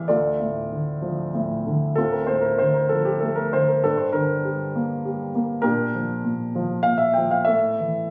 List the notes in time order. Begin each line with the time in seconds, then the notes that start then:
Already playing: E3 G3 G4 A4 E5
0.08 D2 F4 A4 D5
0.40 A2
0.71 D3
1.02 F3
1.35 A2
1.67 D3
1.96 D2 C4 F4 A4
2.12 A#4
2.27 A2 C5
2.41 A#4
2.58 D3 C5
2.74 A#4
2.89 F3 A4
3.05 G4
3.20 A3 A4
3.36 A#4
3.53 D3 C5
3.68 A#4
3.84 G2 D4 A4
3.97 C5
4.13 D3 D4 A#4
4.45 G3
4.76 A#3
5.05 G3
5.35 A#3
5.62 A#2 D4 G4 A#4
5.95 F3
6.24 A#2
6.55 F3
6.83 A#2 F5
6.98 E5
7.13 G5
7.18 F3
7.31 F5
7.45 A2 A4 C#5 E5
7.80 E3